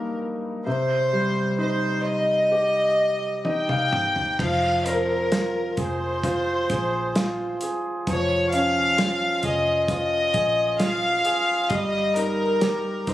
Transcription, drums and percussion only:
3.45 high tom
3.69 mid tom
3.93 mid tom
4.16 floor tom
4.39 kick, crash
4.86 closed hi-hat
5.32 snare, closed hi-hat
5.77 kick, closed hi-hat
6.23 kick, closed hi-hat
6.70 kick, closed hi-hat
7.15 snare, closed hi-hat
7.61 closed hi-hat
8.07 kick, closed hi-hat
8.52 closed hi-hat
8.98 snare, closed hi-hat
9.43 kick, closed hi-hat
9.88 kick, closed hi-hat
10.34 kick, closed hi-hat
10.80 snare, closed hi-hat
11.25 closed hi-hat
11.70 kick, closed hi-hat
12.16 closed hi-hat
12.61 snare, closed hi-hat
13.07 kick, closed hi-hat

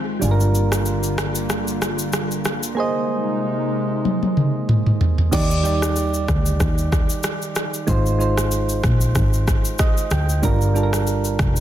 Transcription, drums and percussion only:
0.22 shaker
0.40 shaker
0.55 shaker
0.72 cross-stick, shaker
0.86 shaker
1.03 shaker
1.18 cross-stick, shaker
1.35 shaker
1.50 cross-stick, shaker
1.68 shaker
1.82 cross-stick, shaker
1.99 shaker
2.13 cross-stick, shaker
2.31 shaker
2.45 cross-stick, shaker
2.63 shaker
4.05 high tom
4.23 high tom
4.37 mid tom
4.69 mid tom
4.86 mid tom
5.01 floor tom
5.18 floor tom
5.33 kick, crash, shaker
5.51 shaker
5.65 shaker
5.82 cross-stick, shaker
5.96 shaker
6.14 shaker
6.28 kick, cross-stick, shaker
6.46 shaker
6.60 kick, cross-stick, shaker
6.78 shaker
6.92 kick, cross-stick, shaker
7.10 shaker
7.23 cross-stick, shaker
7.42 shaker
7.56 cross-stick, shaker
7.74 shaker
7.88 kick, shaker
8.06 shaker
8.21 shaker
8.38 cross-stick, shaker
8.51 shaker
8.69 shaker
8.84 kick, cross-stick, shaker
9.01 shaker
9.15 kick, cross-stick, shaker
9.33 shaker
9.48 kick, cross-stick, shaker
9.65 shaker
9.79 kick, cross-stick, shaker
9.97 shaker
10.11 cross-stick, shaker
10.29 shaker
10.43 kick, shaker
10.61 shaker
10.76 shaker
10.93 cross-stick, shaker
11.07 shaker
11.25 shaker
11.39 kick, cross-stick, shaker
11.56 shaker

